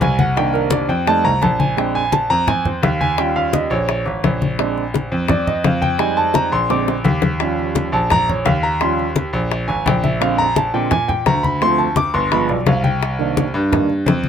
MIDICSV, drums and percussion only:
0, 0, Header, 1, 2, 480
1, 0, Start_track
1, 0, Tempo, 351494
1, 497, Time_signature, 4, 2, 24, 8
1, 19510, End_track
2, 0, Start_track
2, 0, Title_t, "Drums"
2, 14, Note_on_c, 9, 63, 86
2, 29, Note_on_c, 9, 60, 34
2, 29, Note_on_c, 9, 61, 81
2, 151, Note_off_c, 9, 63, 0
2, 166, Note_off_c, 9, 60, 0
2, 166, Note_off_c, 9, 61, 0
2, 257, Note_on_c, 9, 63, 93
2, 263, Note_on_c, 9, 60, 36
2, 393, Note_off_c, 9, 63, 0
2, 400, Note_off_c, 9, 60, 0
2, 497, Note_on_c, 9, 63, 37
2, 510, Note_on_c, 9, 60, 69
2, 633, Note_off_c, 9, 63, 0
2, 646, Note_off_c, 9, 60, 0
2, 732, Note_on_c, 9, 63, 36
2, 753, Note_on_c, 9, 60, 35
2, 869, Note_off_c, 9, 63, 0
2, 890, Note_off_c, 9, 60, 0
2, 963, Note_on_c, 9, 63, 99
2, 987, Note_on_c, 9, 60, 60
2, 1100, Note_off_c, 9, 63, 0
2, 1123, Note_off_c, 9, 60, 0
2, 1212, Note_on_c, 9, 63, 37
2, 1228, Note_on_c, 9, 60, 33
2, 1349, Note_off_c, 9, 63, 0
2, 1364, Note_off_c, 9, 60, 0
2, 1460, Note_on_c, 9, 63, 37
2, 1467, Note_on_c, 9, 60, 69
2, 1596, Note_off_c, 9, 63, 0
2, 1604, Note_off_c, 9, 60, 0
2, 1696, Note_on_c, 9, 63, 37
2, 1833, Note_off_c, 9, 63, 0
2, 1935, Note_on_c, 9, 63, 73
2, 1946, Note_on_c, 9, 60, 32
2, 1946, Note_on_c, 9, 61, 87
2, 2071, Note_off_c, 9, 63, 0
2, 2083, Note_off_c, 9, 60, 0
2, 2083, Note_off_c, 9, 61, 0
2, 2181, Note_on_c, 9, 63, 83
2, 2195, Note_on_c, 9, 60, 38
2, 2318, Note_off_c, 9, 63, 0
2, 2331, Note_off_c, 9, 60, 0
2, 2423, Note_on_c, 9, 63, 35
2, 2436, Note_on_c, 9, 60, 64
2, 2559, Note_off_c, 9, 63, 0
2, 2572, Note_off_c, 9, 60, 0
2, 2664, Note_on_c, 9, 63, 32
2, 2800, Note_off_c, 9, 63, 0
2, 2901, Note_on_c, 9, 63, 83
2, 2911, Note_on_c, 9, 60, 58
2, 3038, Note_off_c, 9, 63, 0
2, 3048, Note_off_c, 9, 60, 0
2, 3142, Note_on_c, 9, 63, 33
2, 3279, Note_off_c, 9, 63, 0
2, 3381, Note_on_c, 9, 63, 37
2, 3381, Note_on_c, 9, 64, 90
2, 3386, Note_on_c, 9, 60, 69
2, 3518, Note_off_c, 9, 63, 0
2, 3518, Note_off_c, 9, 64, 0
2, 3522, Note_off_c, 9, 60, 0
2, 3623, Note_on_c, 9, 63, 37
2, 3623, Note_on_c, 9, 64, 68
2, 3759, Note_off_c, 9, 63, 0
2, 3759, Note_off_c, 9, 64, 0
2, 3869, Note_on_c, 9, 60, 69
2, 3869, Note_on_c, 9, 61, 78
2, 3872, Note_on_c, 9, 63, 73
2, 4005, Note_off_c, 9, 60, 0
2, 4005, Note_off_c, 9, 61, 0
2, 4009, Note_off_c, 9, 63, 0
2, 4114, Note_on_c, 9, 63, 73
2, 4251, Note_off_c, 9, 63, 0
2, 4345, Note_on_c, 9, 60, 68
2, 4359, Note_on_c, 9, 63, 36
2, 4481, Note_off_c, 9, 60, 0
2, 4495, Note_off_c, 9, 63, 0
2, 4590, Note_on_c, 9, 63, 37
2, 4726, Note_off_c, 9, 63, 0
2, 4824, Note_on_c, 9, 60, 59
2, 4827, Note_on_c, 9, 63, 95
2, 4960, Note_off_c, 9, 60, 0
2, 4963, Note_off_c, 9, 63, 0
2, 5066, Note_on_c, 9, 60, 37
2, 5203, Note_off_c, 9, 60, 0
2, 5308, Note_on_c, 9, 60, 74
2, 5316, Note_on_c, 9, 63, 39
2, 5445, Note_off_c, 9, 60, 0
2, 5453, Note_off_c, 9, 63, 0
2, 5541, Note_on_c, 9, 60, 31
2, 5562, Note_on_c, 9, 63, 37
2, 5678, Note_off_c, 9, 60, 0
2, 5699, Note_off_c, 9, 63, 0
2, 5790, Note_on_c, 9, 60, 66
2, 5790, Note_on_c, 9, 61, 82
2, 5791, Note_on_c, 9, 63, 78
2, 5926, Note_off_c, 9, 60, 0
2, 5926, Note_off_c, 9, 61, 0
2, 5927, Note_off_c, 9, 63, 0
2, 6030, Note_on_c, 9, 60, 36
2, 6035, Note_on_c, 9, 63, 92
2, 6166, Note_off_c, 9, 60, 0
2, 6171, Note_off_c, 9, 63, 0
2, 6269, Note_on_c, 9, 60, 69
2, 6278, Note_on_c, 9, 63, 37
2, 6405, Note_off_c, 9, 60, 0
2, 6415, Note_off_c, 9, 63, 0
2, 6521, Note_on_c, 9, 63, 39
2, 6657, Note_off_c, 9, 63, 0
2, 6749, Note_on_c, 9, 60, 63
2, 6764, Note_on_c, 9, 63, 88
2, 6886, Note_off_c, 9, 60, 0
2, 6901, Note_off_c, 9, 63, 0
2, 6998, Note_on_c, 9, 63, 36
2, 7135, Note_off_c, 9, 63, 0
2, 7217, Note_on_c, 9, 60, 73
2, 7229, Note_on_c, 9, 63, 37
2, 7229, Note_on_c, 9, 64, 96
2, 7353, Note_off_c, 9, 60, 0
2, 7366, Note_off_c, 9, 63, 0
2, 7366, Note_off_c, 9, 64, 0
2, 7476, Note_on_c, 9, 63, 36
2, 7476, Note_on_c, 9, 64, 73
2, 7612, Note_off_c, 9, 63, 0
2, 7612, Note_off_c, 9, 64, 0
2, 7708, Note_on_c, 9, 60, 66
2, 7708, Note_on_c, 9, 61, 81
2, 7710, Note_on_c, 9, 63, 82
2, 7844, Note_off_c, 9, 60, 0
2, 7844, Note_off_c, 9, 61, 0
2, 7846, Note_off_c, 9, 63, 0
2, 7953, Note_on_c, 9, 63, 72
2, 8089, Note_off_c, 9, 63, 0
2, 8183, Note_on_c, 9, 60, 69
2, 8191, Note_on_c, 9, 63, 34
2, 8319, Note_off_c, 9, 60, 0
2, 8328, Note_off_c, 9, 63, 0
2, 8434, Note_on_c, 9, 63, 36
2, 8570, Note_off_c, 9, 63, 0
2, 8658, Note_on_c, 9, 60, 65
2, 8671, Note_on_c, 9, 63, 97
2, 8794, Note_off_c, 9, 60, 0
2, 8807, Note_off_c, 9, 63, 0
2, 8908, Note_on_c, 9, 60, 37
2, 9044, Note_off_c, 9, 60, 0
2, 9151, Note_on_c, 9, 60, 80
2, 9158, Note_on_c, 9, 63, 36
2, 9288, Note_off_c, 9, 60, 0
2, 9294, Note_off_c, 9, 63, 0
2, 9394, Note_on_c, 9, 60, 89
2, 9399, Note_on_c, 9, 63, 36
2, 9531, Note_off_c, 9, 60, 0
2, 9536, Note_off_c, 9, 63, 0
2, 9622, Note_on_c, 9, 61, 85
2, 9633, Note_on_c, 9, 63, 81
2, 9759, Note_off_c, 9, 61, 0
2, 9769, Note_off_c, 9, 63, 0
2, 9858, Note_on_c, 9, 61, 98
2, 9874, Note_on_c, 9, 63, 81
2, 9995, Note_off_c, 9, 61, 0
2, 10010, Note_off_c, 9, 63, 0
2, 10107, Note_on_c, 9, 60, 72
2, 10128, Note_on_c, 9, 63, 35
2, 10243, Note_off_c, 9, 60, 0
2, 10264, Note_off_c, 9, 63, 0
2, 10365, Note_on_c, 9, 63, 36
2, 10502, Note_off_c, 9, 63, 0
2, 10588, Note_on_c, 9, 60, 61
2, 10594, Note_on_c, 9, 63, 91
2, 10724, Note_off_c, 9, 60, 0
2, 10731, Note_off_c, 9, 63, 0
2, 10845, Note_on_c, 9, 63, 32
2, 10982, Note_off_c, 9, 63, 0
2, 11067, Note_on_c, 9, 60, 67
2, 11084, Note_on_c, 9, 63, 41
2, 11084, Note_on_c, 9, 64, 91
2, 11204, Note_off_c, 9, 60, 0
2, 11220, Note_off_c, 9, 63, 0
2, 11220, Note_off_c, 9, 64, 0
2, 11328, Note_on_c, 9, 63, 37
2, 11328, Note_on_c, 9, 64, 72
2, 11464, Note_off_c, 9, 63, 0
2, 11464, Note_off_c, 9, 64, 0
2, 11548, Note_on_c, 9, 60, 74
2, 11548, Note_on_c, 9, 61, 78
2, 11568, Note_on_c, 9, 63, 84
2, 11685, Note_off_c, 9, 60, 0
2, 11685, Note_off_c, 9, 61, 0
2, 11704, Note_off_c, 9, 63, 0
2, 12029, Note_on_c, 9, 60, 69
2, 12043, Note_on_c, 9, 63, 36
2, 12166, Note_off_c, 9, 60, 0
2, 12179, Note_off_c, 9, 63, 0
2, 12281, Note_on_c, 9, 63, 39
2, 12418, Note_off_c, 9, 63, 0
2, 12505, Note_on_c, 9, 63, 95
2, 12512, Note_on_c, 9, 60, 61
2, 12642, Note_off_c, 9, 63, 0
2, 12648, Note_off_c, 9, 60, 0
2, 12756, Note_on_c, 9, 60, 38
2, 12892, Note_off_c, 9, 60, 0
2, 12992, Note_on_c, 9, 63, 38
2, 12994, Note_on_c, 9, 60, 67
2, 13128, Note_off_c, 9, 63, 0
2, 13130, Note_off_c, 9, 60, 0
2, 13228, Note_on_c, 9, 63, 35
2, 13240, Note_on_c, 9, 60, 33
2, 13365, Note_off_c, 9, 63, 0
2, 13377, Note_off_c, 9, 60, 0
2, 13464, Note_on_c, 9, 63, 83
2, 13486, Note_on_c, 9, 60, 75
2, 13486, Note_on_c, 9, 61, 88
2, 13600, Note_off_c, 9, 63, 0
2, 13623, Note_off_c, 9, 60, 0
2, 13623, Note_off_c, 9, 61, 0
2, 13706, Note_on_c, 9, 63, 94
2, 13721, Note_on_c, 9, 60, 36
2, 13842, Note_off_c, 9, 63, 0
2, 13857, Note_off_c, 9, 60, 0
2, 13952, Note_on_c, 9, 60, 76
2, 13960, Note_on_c, 9, 63, 36
2, 14088, Note_off_c, 9, 60, 0
2, 14097, Note_off_c, 9, 63, 0
2, 14193, Note_on_c, 9, 63, 39
2, 14330, Note_off_c, 9, 63, 0
2, 14425, Note_on_c, 9, 63, 92
2, 14428, Note_on_c, 9, 60, 65
2, 14562, Note_off_c, 9, 63, 0
2, 14565, Note_off_c, 9, 60, 0
2, 14672, Note_on_c, 9, 63, 36
2, 14808, Note_off_c, 9, 63, 0
2, 14898, Note_on_c, 9, 60, 67
2, 14906, Note_on_c, 9, 63, 39
2, 14906, Note_on_c, 9, 64, 92
2, 15035, Note_off_c, 9, 60, 0
2, 15042, Note_off_c, 9, 63, 0
2, 15042, Note_off_c, 9, 64, 0
2, 15145, Note_on_c, 9, 63, 37
2, 15145, Note_on_c, 9, 64, 75
2, 15282, Note_off_c, 9, 63, 0
2, 15282, Note_off_c, 9, 64, 0
2, 15378, Note_on_c, 9, 60, 65
2, 15378, Note_on_c, 9, 61, 78
2, 15385, Note_on_c, 9, 63, 85
2, 15515, Note_off_c, 9, 60, 0
2, 15515, Note_off_c, 9, 61, 0
2, 15521, Note_off_c, 9, 63, 0
2, 15628, Note_on_c, 9, 63, 73
2, 15764, Note_off_c, 9, 63, 0
2, 15865, Note_on_c, 9, 60, 67
2, 15874, Note_on_c, 9, 63, 33
2, 16002, Note_off_c, 9, 60, 0
2, 16010, Note_off_c, 9, 63, 0
2, 16101, Note_on_c, 9, 63, 39
2, 16237, Note_off_c, 9, 63, 0
2, 16332, Note_on_c, 9, 63, 88
2, 16346, Note_on_c, 9, 60, 63
2, 16468, Note_off_c, 9, 63, 0
2, 16483, Note_off_c, 9, 60, 0
2, 16579, Note_on_c, 9, 60, 37
2, 16715, Note_off_c, 9, 60, 0
2, 16820, Note_on_c, 9, 63, 38
2, 16821, Note_on_c, 9, 60, 72
2, 16956, Note_off_c, 9, 63, 0
2, 16958, Note_off_c, 9, 60, 0
2, 17057, Note_on_c, 9, 63, 35
2, 17059, Note_on_c, 9, 60, 34
2, 17193, Note_off_c, 9, 63, 0
2, 17195, Note_off_c, 9, 60, 0
2, 17293, Note_on_c, 9, 63, 80
2, 17297, Note_on_c, 9, 60, 68
2, 17297, Note_on_c, 9, 61, 84
2, 17429, Note_off_c, 9, 63, 0
2, 17434, Note_off_c, 9, 60, 0
2, 17434, Note_off_c, 9, 61, 0
2, 17534, Note_on_c, 9, 63, 77
2, 17547, Note_on_c, 9, 60, 39
2, 17670, Note_off_c, 9, 63, 0
2, 17684, Note_off_c, 9, 60, 0
2, 17774, Note_on_c, 9, 63, 33
2, 17788, Note_on_c, 9, 60, 67
2, 17910, Note_off_c, 9, 63, 0
2, 17925, Note_off_c, 9, 60, 0
2, 18022, Note_on_c, 9, 63, 36
2, 18159, Note_off_c, 9, 63, 0
2, 18260, Note_on_c, 9, 63, 99
2, 18272, Note_on_c, 9, 60, 58
2, 18397, Note_off_c, 9, 63, 0
2, 18409, Note_off_c, 9, 60, 0
2, 18505, Note_on_c, 9, 63, 35
2, 18642, Note_off_c, 9, 63, 0
2, 18744, Note_on_c, 9, 63, 39
2, 18744, Note_on_c, 9, 64, 87
2, 18750, Note_on_c, 9, 60, 65
2, 18880, Note_off_c, 9, 63, 0
2, 18880, Note_off_c, 9, 64, 0
2, 18887, Note_off_c, 9, 60, 0
2, 18973, Note_on_c, 9, 63, 36
2, 19109, Note_off_c, 9, 63, 0
2, 19206, Note_on_c, 9, 63, 86
2, 19226, Note_on_c, 9, 60, 70
2, 19226, Note_on_c, 9, 61, 84
2, 19342, Note_off_c, 9, 63, 0
2, 19363, Note_off_c, 9, 60, 0
2, 19363, Note_off_c, 9, 61, 0
2, 19440, Note_on_c, 9, 63, 71
2, 19510, Note_off_c, 9, 63, 0
2, 19510, End_track
0, 0, End_of_file